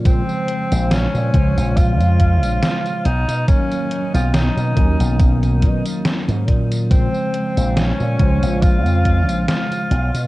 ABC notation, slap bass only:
X:1
M:4/4
L:1/16
Q:"Swing 16ths" 1/4=70
K:Bbm
V:1 name="Slap bass" clef=bass
^A,, z2 B,,,2 B,, D,, B,,,2 F,,2 B,,, z2 =B,,, =B,, | z3 =B,,,2 =B,, ^D,, B,,,3 B,, z2 A,, ^A,,2- | ^A,, z2 B,,,2 B,, D,, B,,,2 F,,2 B,,, z2 =B,,, =B,, |]